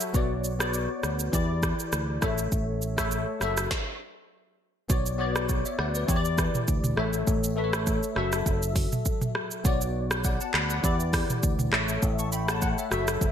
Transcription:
Already playing: tine electric piano F#3 F#4 A4 E5
0.00 shaker
0.13 fingered electric bass B1, tine electric piano B3 F#4 C#5 D5, kick, shaker
0.44 shaker
0.59 tine electric piano B3 F#4 C#5 D5, cross-stick, shaker
0.74 shaker
1.03 fingered electric bass D2, cross-stick, shaker
1.19 shaker
1.32 fingered electric bass E2, tine electric piano E3 E4 G4 D5, kick, shaker
1.63 kick, cross-stick, shaker
1.79 shaker
1.93 fingered electric bass D2, cross-stick, shaker
2.21 fingered electric bass A1, tine electric piano A3 A4 C#5 E5, kick, cross-stick, shaker
2.38 shaker
2.52 fingered electric bass A1, kick, shaker
2.82 shaker
2.97 tine electric piano A3 A4 C#5 E5, kick, cross-stick, shaker
3.11 shaker
3.40 fingered electric bass F#1, tine electric piano F#3 F#4 A4 E5, cross-stick, shaker
3.57 cross-stick, shaker
3.71 kick, snare
4.88 fingered electric bass B1, tine electric piano B3 F#4 C#5 D5, kick, shaker
5.06 shaker
5.18 tine electric piano B3 F#4 C#5 D5
5.36 cross-stick, shaker
5.49 kick, shaker
5.65 tine electric piano C#5 E5, shaker
5.79 fingered electric bass D2, tine electric piano D5 F#5, cross-stick
5.95 tine electric piano B4 D5, shaker
6.07 fingered electric bass E2, tine electric piano E3 E4 G4 C#5, kick, shaker
6.16 tine electric piano D5
6.25 shaker
6.38 kick, cross-stick, shaker
6.55 mid tom, shaker
6.68 fingered electric bass D2, kick, shaker
6.84 mid tom, shaker
6.96 fingered electric bass A1, tine electric piano A3 A4 C#5 E5, cross-stick
7.13 shaker
7.27 fingered electric bass A1, kick, shaker
7.44 shaker
7.56 tine electric piano A3 A4 B4 E5
7.64 tine electric piano C#5
7.73 cross-stick, shaker
7.87 kick, shaker
8.03 shaker
8.15 fingered electric bass F#1, tine electric piano F#3 F#4 A4 E5, cross-stick
8.32 cross-stick, shaker
8.46 fingered electric bass F#1, kick, shaker
8.62 shaker
8.76 kick, open hi-hat, shaker
8.92 mid tom, shaker
9.05 kick, shaker
9.22 mid tom, shaker
9.35 cross-stick
9.51 shaker
9.64 fingered electric bass B1, tine electric piano B3 F#4 C#5 D5, kick, shaker
9.81 shaker
10.11 cross-stick, shaker
10.24 tine electric piano D5 F#5, kick, shaker
10.41 tine electric piano F#5 A5, shaker
10.54 fingered electric bass D2, tine electric piano B5, cross-stick, clap
10.70 tine electric piano D5 F#5, shaker
10.82 fingered electric bass E2, tine electric piano E3 E4 G4 D5, kick, shaker
11.00 shaker
11.13 kick, cross-stick, open hi-hat, shaker
11.30 mid tom, shaker
11.43 fingered electric bass D2, kick, shaker
11.59 mid tom, shaker
11.72 fingered electric bass A1, tine electric piano A3 A4 C#5 E5, cross-stick, clap
11.89 shaker
12.02 fingered electric bass A1, kick, shaker
12.19 tine electric piano A5 C#6, shaker
12.32 tine electric piano G5 B5, shaker
12.48 tine electric piano F#5 A5, cross-stick, shaker
12.62 tine electric piano F#5, kick, shaker
12.78 tine electric piano C#5 E5, shaker
12.90 fingered electric bass F#1, tine electric piano F#3 F#4 A4 E5, cross-stick, shaker
13.08 cross-stick, shaker
13.21 fingered electric bass F#1, kick, shaker

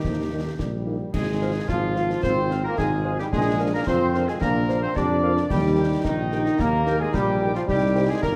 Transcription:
Already playing: euphonium D#3, trumpet section D#4, woodwind section G4
0.04 tuba D#2, trombone section F3, concert bass drum, snare
0.32 trombone section D#3, french horn section G3 A#3 D#4
0.59 tuba A#1, trombone section G3, concert bass drum, snare
0.86 french horn section G3 A#3 D#4
1.13 tuba G#1, trombone section G#3, woodwind section G#4, flute section G#5, concert bass drum, snare, crash
1.42 french horn section F4 C5, trumpet section F5
1.68 tuba G#1, trombone section F3, woodwind section F4, euphonium F4, flute section F5, concert bass drum, snare
1.95 french horn section F4 C5, trumpet section F5, snare
2.10 snare
2.23 tuba G#1, trombone section C4, woodwind section C5, flute section C6, concert bass drum, snare
2.50 french horn section F4 C5, trumpet section F5, snare
2.64 trombone section A#3, woodwind section A#4, flute section A#5
2.78 tuba G#1, trombone section G#3, euphonium D#4, woodwind section G#4, flute section G#5, concert bass drum, snare
3.04 french horn section F4 C5, trumpet section F5
3.19 trombone section G3, woodwind section G4, flute section G5, snare
3.31 tuba A#1, trombone section G#3, euphonium D4, woodwind section G#4, flute section G#5, concert bass drum, snare
3.59 french horn section D4 A#4 C5, trumpet section F5
3.74 trombone section A#3, woodwind section A#4, flute section A#5
3.86 tuba F2, trombone section C4, euphonium F4, woodwind section C5, flute section C6, concert bass drum, snare
4.14 french horn section D4 A#4 C5, trumpet section F5, snare
4.27 trombone section G#3, woodwind section G#4, flute section G#5, snare
4.41 tuba A#1, trombone section A#3, euphonium D4, woodwind section A#4, flute section A#5, concert bass drum, snare
4.68 french horn section D4 A#4 C5, trumpet section F5, snare
4.82 trombone section C4, woodwind section C5, flute section C6
4.95 tuba F2, trombone section D4, euphonium G4, woodwind section D5, flute section D6, concert bass drum, snare
5.23 french horn section D4 A#4 C5, euphonium F4, trumpet section F5
5.37 snare
5.50 tuba D#2, trombone section G3, euphonium D#4, woodwind section G4, flute section G5, concert bass drum, snare, crash
5.78 french horn section D#4 G4 A#4, trumpet section G5
6.04 tuba A#1, trombone section D#3, woodwind section D#4, flute section D#5, concert bass drum, snare
6.32 french horn section D#4 G4 A#4, trumpet section G5, snare
6.46 snare
6.58 tuba D#2, trombone section A#3, woodwind section A#4, flute section A#5, concert bass drum, snare
6.87 french horn section D#4 G4 A#4, trumpet section G5, snare
7.00 trombone section G#3, woodwind section G#4, flute section G#5
7.12 tuba A#1, trombone section G3, euphonium G4, woodwind section G4, flute section G5, concert bass drum, snare
7.41 french horn section D#4 G4 A#4, trumpet section G5
7.55 trombone section F3, woodwind section F4, flute section F5, snare
7.67 tuba C2, trombone section G3, euphonium D#4, woodwind section G4, flute section G5, concert bass drum, snare
7.96 french horn section D#4 G4 C5, trumpet section G5
8.08 trombone section G#3, woodwind section G#4, flute section G#5
8.22 tuba G1, trombone section A#3, woodwind section A#4, flute section A#5, concert bass drum, snare

